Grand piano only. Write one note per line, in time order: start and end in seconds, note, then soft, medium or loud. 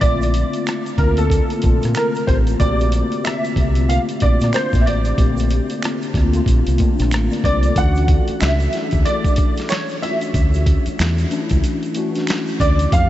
0.01 1.01 D5 medium
0.98 1.18 A#4 medium
1.18 1.98 A4 medium
1.95 2.28 A#4 medium
2.27 2.34 C5 medium
2.60 3.26 D5 medium
3.25 3.91 E5 medium
3.89 3.96 F5 medium
4.22 4.55 D5 medium
4.54 4.81 C5 medium
4.81 4.86 E5 medium
4.86 6.11 D5 medium
7.45 7.77 D5 medium
7.78 8.43 F#5 loud
8.41 9.07 E5 medium
9.05 9.72 D5 medium
9.70 10.03 C#5 medium
10.02 10.95 E5 loud
12.60 12.93 D5 medium
12.93 13.09 F5 medium